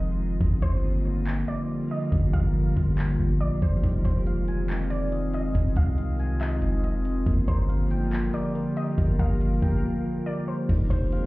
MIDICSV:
0, 0, Header, 1, 7, 480
1, 0, Start_track
1, 0, Tempo, 428571
1, 456, Time_signature, 4, 2, 24, 8
1, 12613, End_track
2, 0, Start_track
2, 0, Title_t, "Synth pluck"
2, 0, Program_c, 0, 84
2, 699, Note_on_c, 0, 72, 94
2, 1613, Note_off_c, 0, 72, 0
2, 1658, Note_on_c, 0, 74, 79
2, 2108, Note_off_c, 0, 74, 0
2, 2141, Note_on_c, 0, 75, 78
2, 2367, Note_off_c, 0, 75, 0
2, 2613, Note_on_c, 0, 77, 88
2, 3291, Note_off_c, 0, 77, 0
2, 3814, Note_on_c, 0, 74, 89
2, 4043, Note_off_c, 0, 74, 0
2, 4059, Note_on_c, 0, 72, 77
2, 4286, Note_off_c, 0, 72, 0
2, 4532, Note_on_c, 0, 72, 73
2, 5449, Note_off_c, 0, 72, 0
2, 5491, Note_on_c, 0, 74, 77
2, 5945, Note_off_c, 0, 74, 0
2, 5984, Note_on_c, 0, 75, 74
2, 6208, Note_off_c, 0, 75, 0
2, 6460, Note_on_c, 0, 77, 86
2, 7135, Note_off_c, 0, 77, 0
2, 7177, Note_on_c, 0, 75, 88
2, 7628, Note_off_c, 0, 75, 0
2, 8377, Note_on_c, 0, 72, 91
2, 9292, Note_off_c, 0, 72, 0
2, 9339, Note_on_c, 0, 74, 83
2, 9789, Note_off_c, 0, 74, 0
2, 9821, Note_on_c, 0, 75, 80
2, 10047, Note_off_c, 0, 75, 0
2, 10297, Note_on_c, 0, 77, 92
2, 10973, Note_off_c, 0, 77, 0
2, 11494, Note_on_c, 0, 74, 91
2, 11723, Note_off_c, 0, 74, 0
2, 11737, Note_on_c, 0, 72, 76
2, 11964, Note_off_c, 0, 72, 0
2, 12210, Note_on_c, 0, 72, 75
2, 12613, Note_off_c, 0, 72, 0
2, 12613, End_track
3, 0, Start_track
3, 0, Title_t, "Synth keys"
3, 0, Program_c, 1, 88
3, 4298, Note_on_c, 1, 63, 80
3, 4541, Note_on_c, 1, 72, 83
3, 4780, Note_on_c, 1, 77, 92
3, 5021, Note_on_c, 1, 80, 103
3, 5247, Note_off_c, 1, 63, 0
3, 5261, Note_on_c, 1, 63, 72
3, 5736, Note_on_c, 1, 75, 93
3, 5965, Note_off_c, 1, 75, 0
3, 5978, Note_on_c, 1, 75, 70
3, 5979, Note_off_c, 1, 72, 0
3, 6198, Note_off_c, 1, 63, 0
3, 6211, Note_on_c, 1, 63, 86
3, 6218, Note_off_c, 1, 77, 0
3, 6445, Note_off_c, 1, 75, 0
3, 6458, Note_off_c, 1, 80, 0
3, 6458, Note_on_c, 1, 75, 86
3, 6693, Note_on_c, 1, 77, 78
3, 6938, Note_on_c, 1, 80, 104
3, 7153, Note_off_c, 1, 63, 0
3, 7166, Note_on_c, 1, 63, 77
3, 7403, Note_off_c, 1, 75, 0
3, 7416, Note_on_c, 1, 75, 72
3, 7651, Note_off_c, 1, 75, 0
3, 7664, Note_on_c, 1, 75, 97
3, 7884, Note_off_c, 1, 75, 0
3, 7897, Note_on_c, 1, 75, 85
3, 8131, Note_off_c, 1, 63, 0
3, 8135, Note_off_c, 1, 77, 0
3, 8137, Note_off_c, 1, 75, 0
3, 8137, Note_off_c, 1, 80, 0
3, 8138, Note_on_c, 1, 58, 84
3, 8376, Note_on_c, 1, 70, 83
3, 8611, Note_on_c, 1, 77, 83
3, 8859, Note_on_c, 1, 79, 108
3, 9076, Note_off_c, 1, 58, 0
3, 9089, Note_on_c, 1, 58, 67
3, 9324, Note_off_c, 1, 70, 0
3, 9337, Note_on_c, 1, 70, 79
3, 9559, Note_off_c, 1, 70, 0
3, 9573, Note_on_c, 1, 70, 96
3, 9805, Note_off_c, 1, 70, 0
3, 9818, Note_on_c, 1, 70, 81
3, 10049, Note_off_c, 1, 58, 0
3, 10053, Note_off_c, 1, 77, 0
3, 10062, Note_on_c, 1, 58, 82
3, 10283, Note_off_c, 1, 70, 0
3, 10296, Note_on_c, 1, 70, 84
3, 10298, Note_off_c, 1, 79, 0
3, 10543, Note_on_c, 1, 77, 80
3, 10775, Note_on_c, 1, 79, 89
3, 11004, Note_off_c, 1, 58, 0
3, 11017, Note_on_c, 1, 58, 72
3, 11244, Note_off_c, 1, 70, 0
3, 11257, Note_on_c, 1, 70, 78
3, 11487, Note_off_c, 1, 70, 0
3, 11500, Note_on_c, 1, 70, 94
3, 11725, Note_off_c, 1, 70, 0
3, 11738, Note_on_c, 1, 70, 78
3, 11975, Note_off_c, 1, 79, 0
3, 11977, Note_off_c, 1, 58, 0
3, 11977, Note_off_c, 1, 70, 0
3, 11978, Note_on_c, 1, 63, 84
3, 11979, Note_off_c, 1, 77, 0
3, 12221, Note_on_c, 1, 72, 91
3, 12460, Note_on_c, 1, 77, 89
3, 12613, Note_off_c, 1, 63, 0
3, 12613, Note_off_c, 1, 72, 0
3, 12613, Note_off_c, 1, 77, 0
3, 12613, End_track
4, 0, Start_track
4, 0, Title_t, "Synth texture"
4, 0, Program_c, 2, 99
4, 0, Note_on_c, 2, 56, 82
4, 0, Note_on_c, 2, 63, 92
4, 0, Note_on_c, 2, 65, 73
4, 417, Note_off_c, 2, 56, 0
4, 418, Note_off_c, 2, 63, 0
4, 456, Note_on_c, 2, 55, 80
4, 457, Note_on_c, 2, 70, 89
4, 4257, Note_off_c, 2, 55, 0
4, 4258, Note_off_c, 2, 70, 0
4, 4295, Note_on_c, 2, 56, 81
4, 4295, Note_on_c, 2, 63, 88
4, 8092, Note_off_c, 2, 65, 0
4, 8097, Note_off_c, 2, 56, 0
4, 8097, Note_off_c, 2, 63, 0
4, 8137, Note_on_c, 2, 55, 78
4, 8137, Note_on_c, 2, 65, 74
4, 8137, Note_on_c, 2, 70, 89
4, 11938, Note_off_c, 2, 55, 0
4, 11938, Note_off_c, 2, 65, 0
4, 11938, Note_off_c, 2, 70, 0
4, 11976, Note_on_c, 2, 53, 83
4, 11976, Note_on_c, 2, 68, 91
4, 11978, Note_on_c, 2, 63, 74
4, 12613, Note_off_c, 2, 53, 0
4, 12613, Note_off_c, 2, 63, 0
4, 12613, Note_off_c, 2, 68, 0
4, 12613, End_track
5, 0, Start_track
5, 0, Title_t, "Ambient pad"
5, 0, Program_c, 3, 92
5, 0, Note_on_c, 3, 51, 81
5, 0, Note_on_c, 3, 53, 74
5, 0, Note_on_c, 3, 56, 71
5, 0, Note_on_c, 3, 60, 73
5, 0, Note_on_c, 3, 65, 91
5, 418, Note_off_c, 3, 51, 0
5, 418, Note_off_c, 3, 60, 0
5, 419, Note_off_c, 3, 56, 0
5, 456, Note_on_c, 3, 50, 83
5, 456, Note_on_c, 3, 55, 79
5, 456, Note_on_c, 3, 58, 74
5, 4258, Note_off_c, 3, 50, 0
5, 4258, Note_off_c, 3, 55, 0
5, 4258, Note_off_c, 3, 58, 0
5, 4296, Note_on_c, 3, 56, 77
5, 4297, Note_on_c, 3, 51, 79
5, 4297, Note_on_c, 3, 60, 78
5, 8092, Note_off_c, 3, 53, 0
5, 8092, Note_off_c, 3, 65, 0
5, 8097, Note_off_c, 3, 56, 0
5, 8098, Note_off_c, 3, 51, 0
5, 8098, Note_off_c, 3, 60, 0
5, 8136, Note_on_c, 3, 58, 78
5, 8137, Note_on_c, 3, 50, 82
5, 8137, Note_on_c, 3, 53, 74
5, 8137, Note_on_c, 3, 55, 72
5, 8137, Note_on_c, 3, 65, 94
5, 11938, Note_off_c, 3, 50, 0
5, 11938, Note_off_c, 3, 53, 0
5, 11938, Note_off_c, 3, 55, 0
5, 11938, Note_off_c, 3, 58, 0
5, 11938, Note_off_c, 3, 65, 0
5, 11975, Note_on_c, 3, 51, 82
5, 11975, Note_on_c, 3, 53, 80
5, 11975, Note_on_c, 3, 56, 78
5, 11975, Note_on_c, 3, 60, 76
5, 11976, Note_on_c, 3, 65, 92
5, 12613, Note_off_c, 3, 51, 0
5, 12613, Note_off_c, 3, 53, 0
5, 12613, Note_off_c, 3, 56, 0
5, 12613, Note_off_c, 3, 60, 0
5, 12613, Note_off_c, 3, 65, 0
5, 12613, End_track
6, 0, Start_track
6, 0, Title_t, "808-style bass"
6, 0, Program_c, 4, 38
6, 0, Note_on_c, 4, 29, 107
6, 427, Note_off_c, 4, 29, 0
6, 456, Note_on_c, 4, 31, 114
6, 686, Note_off_c, 4, 31, 0
6, 697, Note_on_c, 4, 31, 102
6, 1618, Note_off_c, 4, 31, 0
6, 2376, Note_on_c, 4, 31, 114
6, 2606, Note_off_c, 4, 31, 0
6, 2617, Note_on_c, 4, 31, 106
6, 3077, Note_off_c, 4, 31, 0
6, 3097, Note_on_c, 4, 31, 104
6, 3558, Note_off_c, 4, 31, 0
6, 3575, Note_on_c, 4, 31, 111
6, 3817, Note_on_c, 4, 34, 96
6, 3833, Note_off_c, 4, 31, 0
6, 4044, Note_off_c, 4, 34, 0
6, 4055, Note_on_c, 4, 31, 102
6, 4286, Note_off_c, 4, 31, 0
6, 4295, Note_on_c, 4, 29, 107
6, 4526, Note_off_c, 4, 29, 0
6, 4537, Note_on_c, 4, 29, 107
6, 6172, Note_off_c, 4, 29, 0
6, 6214, Note_on_c, 4, 29, 109
6, 6446, Note_off_c, 4, 29, 0
6, 6456, Note_on_c, 4, 36, 111
6, 7378, Note_off_c, 4, 36, 0
6, 7415, Note_on_c, 4, 29, 102
6, 8107, Note_off_c, 4, 29, 0
6, 8136, Note_on_c, 4, 31, 112
6, 8366, Note_off_c, 4, 31, 0
6, 8378, Note_on_c, 4, 31, 106
6, 9298, Note_off_c, 4, 31, 0
6, 10057, Note_on_c, 4, 31, 111
6, 10287, Note_off_c, 4, 31, 0
6, 10297, Note_on_c, 4, 31, 103
6, 10757, Note_off_c, 4, 31, 0
6, 10778, Note_on_c, 4, 31, 106
6, 11007, Note_off_c, 4, 31, 0
6, 11975, Note_on_c, 4, 29, 115
6, 12206, Note_off_c, 4, 29, 0
6, 12216, Note_on_c, 4, 29, 104
6, 12613, Note_off_c, 4, 29, 0
6, 12613, End_track
7, 0, Start_track
7, 0, Title_t, "Drums"
7, 456, Note_on_c, 9, 36, 119
7, 568, Note_off_c, 9, 36, 0
7, 697, Note_on_c, 9, 36, 100
7, 809, Note_off_c, 9, 36, 0
7, 1422, Note_on_c, 9, 39, 116
7, 1534, Note_off_c, 9, 39, 0
7, 2375, Note_on_c, 9, 36, 115
7, 2487, Note_off_c, 9, 36, 0
7, 2617, Note_on_c, 9, 36, 105
7, 2729, Note_off_c, 9, 36, 0
7, 3097, Note_on_c, 9, 36, 95
7, 3209, Note_off_c, 9, 36, 0
7, 3342, Note_on_c, 9, 39, 116
7, 3454, Note_off_c, 9, 39, 0
7, 4056, Note_on_c, 9, 36, 96
7, 4168, Note_off_c, 9, 36, 0
7, 4295, Note_on_c, 9, 36, 116
7, 4295, Note_on_c, 9, 42, 77
7, 4407, Note_off_c, 9, 36, 0
7, 4407, Note_off_c, 9, 42, 0
7, 4535, Note_on_c, 9, 42, 84
7, 4536, Note_on_c, 9, 36, 103
7, 4647, Note_off_c, 9, 42, 0
7, 4648, Note_off_c, 9, 36, 0
7, 4778, Note_on_c, 9, 42, 75
7, 4890, Note_off_c, 9, 42, 0
7, 5016, Note_on_c, 9, 42, 76
7, 5128, Note_off_c, 9, 42, 0
7, 5254, Note_on_c, 9, 42, 89
7, 5261, Note_on_c, 9, 39, 117
7, 5366, Note_off_c, 9, 42, 0
7, 5373, Note_off_c, 9, 39, 0
7, 5493, Note_on_c, 9, 42, 80
7, 5605, Note_off_c, 9, 42, 0
7, 5736, Note_on_c, 9, 42, 67
7, 5848, Note_off_c, 9, 42, 0
7, 5976, Note_on_c, 9, 42, 67
7, 6088, Note_off_c, 9, 42, 0
7, 6214, Note_on_c, 9, 42, 80
7, 6215, Note_on_c, 9, 36, 122
7, 6326, Note_off_c, 9, 42, 0
7, 6327, Note_off_c, 9, 36, 0
7, 6454, Note_on_c, 9, 42, 84
7, 6456, Note_on_c, 9, 36, 102
7, 6566, Note_off_c, 9, 42, 0
7, 6568, Note_off_c, 9, 36, 0
7, 6698, Note_on_c, 9, 42, 72
7, 6810, Note_off_c, 9, 42, 0
7, 6936, Note_on_c, 9, 46, 55
7, 7048, Note_off_c, 9, 46, 0
7, 7175, Note_on_c, 9, 42, 89
7, 7182, Note_on_c, 9, 39, 120
7, 7287, Note_off_c, 9, 42, 0
7, 7294, Note_off_c, 9, 39, 0
7, 7415, Note_on_c, 9, 42, 78
7, 7527, Note_off_c, 9, 42, 0
7, 7659, Note_on_c, 9, 42, 68
7, 7771, Note_off_c, 9, 42, 0
7, 7898, Note_on_c, 9, 42, 68
7, 8010, Note_off_c, 9, 42, 0
7, 8136, Note_on_c, 9, 36, 115
7, 8136, Note_on_c, 9, 42, 76
7, 8248, Note_off_c, 9, 36, 0
7, 8248, Note_off_c, 9, 42, 0
7, 8376, Note_on_c, 9, 42, 87
7, 8377, Note_on_c, 9, 36, 105
7, 8488, Note_off_c, 9, 42, 0
7, 8489, Note_off_c, 9, 36, 0
7, 8620, Note_on_c, 9, 42, 73
7, 8732, Note_off_c, 9, 42, 0
7, 8858, Note_on_c, 9, 42, 74
7, 8970, Note_off_c, 9, 42, 0
7, 9096, Note_on_c, 9, 42, 83
7, 9103, Note_on_c, 9, 39, 118
7, 9208, Note_off_c, 9, 42, 0
7, 9215, Note_off_c, 9, 39, 0
7, 9337, Note_on_c, 9, 42, 79
7, 9449, Note_off_c, 9, 42, 0
7, 9579, Note_on_c, 9, 42, 66
7, 9691, Note_off_c, 9, 42, 0
7, 9818, Note_on_c, 9, 42, 68
7, 9930, Note_off_c, 9, 42, 0
7, 10056, Note_on_c, 9, 36, 114
7, 10057, Note_on_c, 9, 42, 75
7, 10168, Note_off_c, 9, 36, 0
7, 10169, Note_off_c, 9, 42, 0
7, 10297, Note_on_c, 9, 42, 86
7, 10298, Note_on_c, 9, 36, 107
7, 10409, Note_off_c, 9, 42, 0
7, 10410, Note_off_c, 9, 36, 0
7, 10540, Note_on_c, 9, 42, 76
7, 10652, Note_off_c, 9, 42, 0
7, 10777, Note_on_c, 9, 42, 75
7, 10778, Note_on_c, 9, 36, 104
7, 10889, Note_off_c, 9, 42, 0
7, 10890, Note_off_c, 9, 36, 0
7, 11975, Note_on_c, 9, 42, 79
7, 11975, Note_on_c, 9, 49, 106
7, 11976, Note_on_c, 9, 36, 123
7, 12087, Note_off_c, 9, 42, 0
7, 12087, Note_off_c, 9, 49, 0
7, 12088, Note_off_c, 9, 36, 0
7, 12216, Note_on_c, 9, 42, 88
7, 12217, Note_on_c, 9, 36, 104
7, 12328, Note_off_c, 9, 42, 0
7, 12329, Note_off_c, 9, 36, 0
7, 12459, Note_on_c, 9, 42, 81
7, 12571, Note_off_c, 9, 42, 0
7, 12613, End_track
0, 0, End_of_file